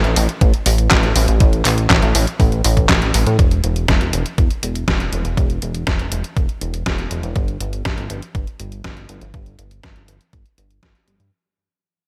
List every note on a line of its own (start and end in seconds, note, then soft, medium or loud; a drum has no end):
0.04 0.15 A1 medium
0.04 closed hi-hat soft
0.16 0.28 A1 loud
0.16 open hi-hat loud
0.29 closed hi-hat soft
0.41 0.52 A1 medium
0.41 kick loud
0.41 closed hi-hat medium
0.54 closed hi-hat soft
0.66 0.88 A1 medium
0.66 open hi-hat loud
0.78 closed hi-hat soft
0.91 1.13 A1 loud
0.91 kick loud
0.91 snare loud
0.91 clap medium
0.91 closed hi-hat medium
1.03 closed hi-hat soft
1.16 1.27 A1 loud
1.16 open hi-hat loud
1.28 1.39 A1 loud
1.28 closed hi-hat soft
1.40 1.63 A1 loud
1.40 kick loud
1.40 closed hi-hat medium
1.53 closed hi-hat soft
1.65 1.87 A1 medium
1.65 clap medium
1.65 open hi-hat loud
1.78 closed hi-hat soft
1.90 2.01 A1 medium
1.90 kick loud
1.90 snare loud
1.90 clap medium
1.90 closed hi-hat medium
2.02 2.13 A1 medium
2.02 closed hi-hat soft
2.15 2.26 A1 loud
2.15 open hi-hat loud
2.27 closed hi-hat soft
2.40 2.62 A1 loud
2.40 kick loud
2.40 open hi-hat medium
2.52 closed hi-hat soft
2.64 2.87 A1 loud
2.64 open hi-hat loud
2.77 kick medium
2.77 closed hi-hat soft
2.89 3.11 A1 medium
2.89 kick loud
2.89 snare loud
2.89 clap medium
2.89 closed hi-hat medium
3.02 closed hi-hat soft
3.14 3.25 A1 medium
3.14 open hi-hat loud
3.27 3.38 A2 loud
3.27 closed hi-hat soft
3.39 3.61 E1 loud
3.39 kick loud
3.39 closed hi-hat medium
3.51 closed hi-hat soft
3.64 3.86 E1 medium
3.64 closed hi-hat loud
3.76 closed hi-hat soft
3.88 4.00 E1 medium
3.88 kick loud
3.88 snare loud
3.88 closed hi-hat medium
4.01 4.12 E1 medium
4.01 closed hi-hat soft
4.13 4.24 E1 loud
4.13 closed hi-hat loud
4.26 closed hi-hat soft
4.38 4.49 E1 medium
4.38 kick loud
4.38 closed hi-hat medium
4.51 closed hi-hat soft
4.63 4.85 E1 medium
4.63 closed hi-hat medium
4.75 closed hi-hat soft
4.88 5.10 E1 medium
4.88 kick loud
4.88 snare loud
4.88 closed hi-hat medium
5.00 closed hi-hat soft
5.13 5.24 E1 loud
5.13 closed hi-hat medium
5.25 5.36 E1 loud
5.25 closed hi-hat soft
5.37 5.59 E1 loud
5.37 kick loud
5.37 closed hi-hat medium
5.50 closed hi-hat soft
5.62 5.84 E1 medium
5.62 closed hi-hat medium
5.75 closed hi-hat soft
5.87 5.98 E1 medium
5.87 kick loud
5.87 snare loud
5.87 closed hi-hat medium
5.99 6.10 E1 medium
5.99 closed hi-hat soft
6.12 6.23 E1 loud
6.12 closed hi-hat medium
6.24 closed hi-hat soft
6.37 6.48 E1 medium
6.37 kick loud
6.37 closed hi-hat medium
6.49 closed hi-hat soft
6.61 6.83 E1 medium
6.61 closed hi-hat medium
6.74 closed hi-hat soft
6.86 7.08 E1 medium
6.86 kick loud
6.86 snare loud
6.86 closed hi-hat medium
6.98 closed hi-hat soft
7.11 7.22 E1 loud
7.11 closed hi-hat medium
7.23 7.34 E1 loud
7.23 closed hi-hat soft
7.36 7.58 G1 medium
7.36 kick loud
7.36 closed hi-hat medium
7.48 closed hi-hat soft
7.61 7.83 G1 medium
7.61 closed hi-hat medium
7.73 closed hi-hat soft
7.85 7.96 G1 medium
7.85 kick loud
7.85 snare loud
7.85 closed hi-hat medium
7.98 8.09 G1 medium
7.98 closed hi-hat soft
8.10 8.21 G1 loud
8.10 closed hi-hat medium
8.22 closed hi-hat soft
8.35 8.46 G1 medium
8.35 kick loud
8.35 closed hi-hat medium
8.47 closed hi-hat soft
8.60 8.82 G1 medium
8.60 closed hi-hat medium
8.72 closed hi-hat soft
8.84 9.06 G1 medium
8.84 kick loud
8.84 snare loud
8.84 closed hi-hat medium
8.97 closed hi-hat soft
9.09 9.20 G1 loud
9.09 closed hi-hat medium
9.21 9.33 G1 loud
9.21 closed hi-hat soft
9.34 9.56 G1 loud
9.34 kick loud
9.34 closed hi-hat medium
9.46 closed hi-hat soft
9.59 9.81 G1 medium
9.59 closed hi-hat medium
9.71 closed hi-hat soft
9.83 9.95 G1 medium
9.83 kick loud
9.83 snare loud
9.83 closed hi-hat medium
9.96 10.07 G1 medium
9.96 closed hi-hat soft
10.08 10.19 G1 loud
10.08 closed hi-hat medium
10.21 closed hi-hat soft
10.33 10.44 G1 medium
10.33 kick loud
10.33 closed hi-hat medium
10.46 closed hi-hat soft
10.58 10.80 G1 medium
10.58 closed hi-hat medium
10.71 closed hi-hat soft
10.83 10.94 G1 medium
10.83 kick loud
10.83 snare loud
10.83 closed hi-hat medium
10.95 closed hi-hat soft
11.08 11.19 G1 medium
11.08 closed hi-hat medium
11.20 11.31 G2 medium
11.20 closed hi-hat soft